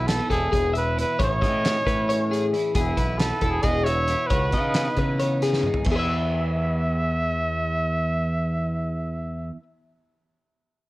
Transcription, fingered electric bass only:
0.00 0.19 B1 medium
0.31 0.47 E1 medium
0.53 1.03 E1 medium
1.20 1.43 A1 medium
1.42 1.75 A2 medium
1.86 2.53 A2 medium
2.75 2.92 E1 medium
2.98 3.31 B1 medium
3.42 3.59 E1 medium
3.64 4.14 E1 medium
4.31 4.55 C#2 medium
4.53 4.87 C#3 medium
4.97 5.65 C#3 medium
5.86 9.50 E2 medium

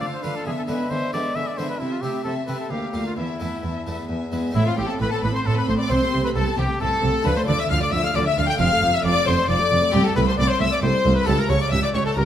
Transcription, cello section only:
0.01 0.09 D3 medium
0.24 0.32 D3 soft
0.46 0.54 D3 medium
0.69 0.77 D3 medium
0.91 0.99 D3 medium
1.13 1.21 D3 medium
1.36 1.44 D3 soft
1.58 1.66 D3 soft
1.80 1.88 C3 medium
2.02 2.10 C3 soft
2.26 2.34 C3 medium
2.48 2.56 C3 soft
2.71 2.79 D2 soft
2.94 3.02 D2 soft
3.17 3.25 E2 medium
3.41 3.49 E2 medium
3.63 3.71 E2 medium
3.86 3.94 E2 soft
4.09 4.17 E2 soft
4.32 4.40 E2 soft
4.55 4.63 A2 medium
4.78 4.86 A2 medium
5.01 5.09 A2 medium
5.23 5.31 A2 medium
5.46 5.54 A2 medium
5.67 5.75 A2 medium
5.90 5.98 C3 medium
6.13 6.21 C3 medium
6.35 6.43 C3 medium
6.58 6.66 C3 medium
6.81 6.89 C3 medium
7.03 7.11 C3 medium
7.25 7.33 D3 medium
7.47 7.55 D3 medium
7.70 7.78 D3 medium
7.93 8.01 D3 medium
8.15 8.23 D3 medium
8.37 8.45 D3 medium
8.59 8.67 F2 medium
8.83 8.91 F2 medium
9.05 9.13 F2 medium
9.28 9.36 F2 medium
9.50 9.58 F2 medium
9.72 9.80 F2 medium
9.94 10.02 C2 medium
10.17 10.25 C2 medium
10.39 10.47 C2 medium
10.61 10.69 C2 medium
10.83 10.91 C2 medium
11.05 11.13 C2 medium
11.28 11.36 C#2 medium
11.50 11.58 C#2 medium
11.72 11.80 C#2 medium
11.95 12.03 C#2 medium
12.17 12.25 C#2 medium

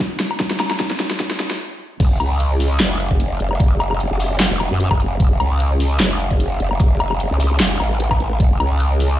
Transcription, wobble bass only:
2.00 2.19 F#1 loud
2.20 2.79 C#2 medium
2.80 3.39 F#1 loud
3.40 3.49 F#1 loud
3.51 4.09 F#1 loud
4.11 4.49 F#1 loud
4.51 4.69 E1 loud
4.71 4.89 F#2 loud
4.91 5.19 F#1 loud
5.20 5.39 F#1 medium
5.40 5.99 C#2 loud
6.00 6.59 F#1 loud
6.60 6.69 F#1 loud
6.71 7.29 F#1 medium
7.31 7.59 C#2 loud
7.60 7.79 F#1 loud
7.80 8.39 A1 medium
8.40 8.59 F#1 loud
8.60 9.19 C#2 loud

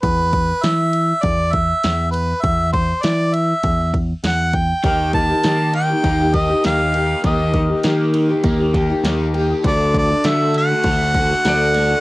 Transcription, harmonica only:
0.03 0.65 B4 medium
0.64 1.24 E5 loud
1.23 1.54 D5 medium
1.53 2.10 E5 loud
2.11 2.43 B4 medium
2.42 2.72 E5 medium
2.73 3.04 C5 medium
3.03 3.35 D5 medium
3.34 3.94 E5 medium
4.25 4.56 F#5 medium
4.54 4.84 G5 medium
4.85 5.13 G5 medium
5.14 5.71 A5 loud
5.75 6.36 G5 medium
6.34 6.65 D#5 medium
6.66 7.21 F5 medium
7.26 7.82 D#5 medium
9.67 9.94 D5 medium
9.98 10.29 D5 medium
10.27 10.56 E5 medium
10.58 12.00 F#5 loud

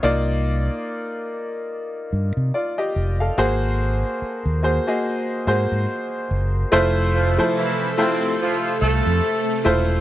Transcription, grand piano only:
0.03 1.51 A#3 loud
0.03 1.51 D#4 medium
0.03 1.51 F4 medium
0.03 1.51 D5 loud
2.54 2.78 F4 soft
2.54 2.77 D5 medium
2.78 3.18 G4 medium
2.78 3.18 D#5 medium
3.20 3.61 A4 soft
3.20 3.60 F5 medium
3.38 4.49 A#3 medium
3.38 4.49 F#4 medium
3.38 4.49 G#4 medium
3.38 4.50 C5 loud
4.63 4.84 A#3 medium
4.63 4.84 F#4 medium
4.63 4.85 G#4 medium
4.63 4.85 C5 medium
4.87 5.40 A#3 medium
4.87 5.40 F#4 medium
4.87 5.40 G#4 medium
4.87 5.40 D#5 medium
5.47 6.58 A#3 medium
5.47 6.58 F#4 medium
5.47 6.59 G#4 medium
5.47 6.59 C5 medium
6.72 7.28 A3 loud
6.72 7.29 E4 medium
6.72 7.29 F4 medium
6.72 7.29 C5 loud
7.38 7.91 F3 medium
7.38 7.91 A3 medium
7.38 7.91 E4 medium
7.38 7.91 C5 medium
7.97 9.45 A3 medium
7.97 9.46 E4 medium
7.97 9.46 F4 medium
7.97 9.46 C5 medium
9.64 10.01 A3 medium
9.64 10.01 E4 medium
9.64 10.01 F4 medium
9.64 10.01 C5 medium

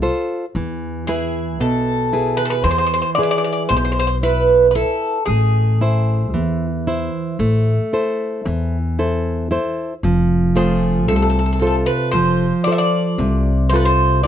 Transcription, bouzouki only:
1.07 1.60 G#4 medium
1.61 2.42 A4 medium
2.37 2.45 B4 medium
2.45 2.52 A4 medium
2.50 2.63 B4 medium
2.64 2.70 C5 medium
2.71 2.77 C5 medium
2.78 2.85 C5 medium
2.86 2.92 C5 medium
2.94 3.00 C5 medium
3.02 3.09 C5 medium
3.15 3.22 D5 medium
3.23 3.30 D5 medium
3.31 3.37 D5 medium
3.38 3.43 D5 medium
3.44 3.51 D5 medium
3.53 3.62 D5 medium
3.69 3.75 C5 medium
3.76 3.83 C5 medium
3.85 3.91 C5 medium
3.92 3.98 C5 medium
3.99 4.06 C5 medium
4.07 4.15 C5 medium
4.23 4.66 B4 medium
4.71 4.75 B4 medium
4.75 5.25 A4 medium
5.26 7.34 G#4 medium
10.57 11.08 G#4 medium
11.08 11.15 A4 medium
11.16 11.21 A4 medium
11.22 11.28 A4 medium
11.30 11.37 A4 medium
11.39 11.45 A4 medium
11.46 11.51 A4 soft
11.53 11.58 A4 medium
11.59 11.66 A4 soft
11.67 11.74 A4 medium
11.86 12.11 B4 medium
12.11 12.64 C5 medium
12.64 12.72 D5 medium
12.72 12.78 E5 medium
12.78 13.69 D5 medium
13.69 13.75 C5 medium
13.75 13.84 B4 medium
13.85 14.21 C5 medium
14.23 14.27 D5 medium

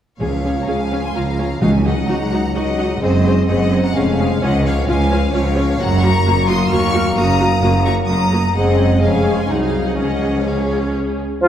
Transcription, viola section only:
0.21 0.29 C#4 medium
0.21 0.29 G#4 medium
0.44 0.52 C#4 soft
0.44 0.52 G#4 soft
0.68 0.76 C#4 medium
0.68 0.76 G#4 medium
0.92 1.00 C#4 soft
0.92 1.00 G#4 soft
1.15 1.23 C#4 medium
1.15 1.23 F4 medium
1.38 1.46 C#4 medium
1.38 1.46 F4 medium
1.61 1.70 D#4 medium
1.61 1.69 F#4 medium
1.85 1.93 D#4 medium
1.85 1.93 F#4 medium
2.08 2.16 D#4 medium
2.08 2.16 F#4 medium
2.32 2.40 D#4 medium
2.32 2.40 F#4 medium
2.55 2.64 D#4 medium
2.55 2.63 F#4 medium
2.79 2.87 D#4 medium
2.79 2.87 F#4 medium
3.02 3.10 C4 medium
3.02 3.10 G#4 medium
3.26 3.34 C4 medium
3.26 3.34 G#4 medium
3.49 3.57 C4 medium
3.49 3.57 G#4 medium
3.72 3.80 C4 medium
3.72 3.80 G#4 medium
3.96 4.04 C#4 medium
3.96 4.04 G#4 medium
4.19 4.27 C#4 medium
4.19 4.27 G#4 medium
4.42 4.50 C#4 medium
4.42 4.50 F4 medium
4.65 4.73 C#4 medium
4.65 4.73 F4 medium
4.88 4.96 C#4 medium
4.88 4.96 F4 medium
5.11 5.19 C#4 medium
5.11 5.19 F4 medium
5.34 5.42 C#4 medium
5.34 5.42 F4 medium
5.57 5.65 C#4 medium
5.57 5.65 F4 medium
5.80 5.88 A#3 medium
5.80 5.88 F#4 medium
6.03 6.11 A#3 medium
6.03 6.11 F#4 medium
6.26 6.34 A#3 medium
6.26 6.34 F#4 medium
6.49 6.57 A#3 medium
6.49 6.57 F#4 medium
6.72 6.80 A#3 medium
6.72 6.80 F#4 medium
6.94 7.02 A#3 medium
6.94 7.02 F#4 medium
7.17 7.25 A#3 medium
7.17 7.25 F#4 medium
7.40 7.48 A#3 medium
7.40 7.48 F#4 medium
7.63 7.71 A#3 medium
7.63 7.71 F#4 medium
7.86 7.94 A#3 medium
7.86 7.94 F#4 medium
8.09 8.17 A#3 medium
8.09 8.17 F#4 medium
8.32 8.40 A#3 medium
8.32 8.41 F#4 medium
8.56 9.00 C4 medium
8.56 9.00 G#4 medium
9.03 9.49 C#4 medium
9.03 9.48 G#4 medium
9.50 9.98 D#4 medium
9.50 9.97 G#4 medium
9.98 10.45 C#4 medium
9.98 10.45 G#4 medium
10.46 11.20 C#4 medium
10.46 11.21 G#4 medium

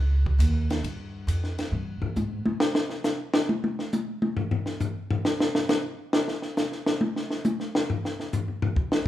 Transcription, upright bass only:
0.00 0.38 C#2 medium
0.38 0.82 D#2 medium
0.83 1.26 G2 medium
1.27 1.70 F2 medium
1.72 2.00 G2 medium
2.02 muted upright bass stroke soft
2.16 2.44 G#2 medium
2.46 muted upright bass stroke soft

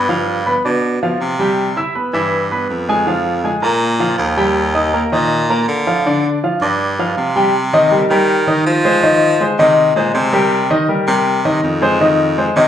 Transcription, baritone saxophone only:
0.00 0.59 G2 medium
0.64 0.99 B2 medium
1.02 1.19 B2 medium
1.20 1.81 C3 medium
2.13 2.66 G2 medium
2.69 3.57 F2 medium
3.62 4.15 A#2 loud
4.18 5.06 D#2 medium
5.12 5.64 A#2 loud
5.68 6.28 D3 medium
6.61 7.13 G2 loud
7.17 8.04 C3 medium
8.10 8.62 D#3 medium
8.66 9.53 F3 loud
9.59 9.93 C3 medium
9.96 10.13 A#2 medium
10.14 10.75 C3 loud
11.07 11.59 C3 loud
11.63 12.50 F2 loud
12.56 12.68 C3 loud

